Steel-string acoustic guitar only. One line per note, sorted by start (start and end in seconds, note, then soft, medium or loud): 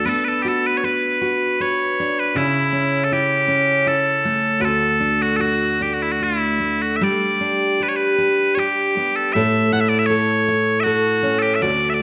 0.00 0.14 A3 soft
0.00 1.99 D4 soft
0.05 2.35 B3 medium
0.05 0.82 B4 medium
0.45 1.20 F#4 soft
0.84 1.59 B4 medium
1.21 2.43 F#4 medium
1.60 2.35 B4 medium
2.00 2.44 D4 soft
2.35 4.63 C#3 medium
2.35 3.11 E4 medium
2.72 3.47 C#4 medium
3.12 3.85 E4 medium
3.48 4.70 C#4 medium
3.86 4.60 E4 medium
4.25 6.60 A3 soft
4.60 7.00 D2 medium
4.60 5.38 F#4 medium
5.00 5.80 D4 medium
5.39 6.19 F#4 soft
5.81 7.40 D4 soft
6.21 7.01 F#4 soft
6.60 7.09 A3 soft
7.01 9.34 G3 medium
7.01 7.79 G4 soft
7.41 8.17 D4 soft
7.80 8.56 G4 medium
8.18 9.41 D4 soft
8.57 9.34 G4 medium
8.97 9.42 B3 soft
9.35 11.62 A2 medium
9.35 10.09 A4 medium
9.72 10.47 E4 medium
10.10 10.86 A4 medium
10.48 11.70 E4 medium
10.86 11.62 A4 medium
11.23 11.69 C#4 soft
11.62 12.02 D2 medium
11.62 12.02 F#4 medium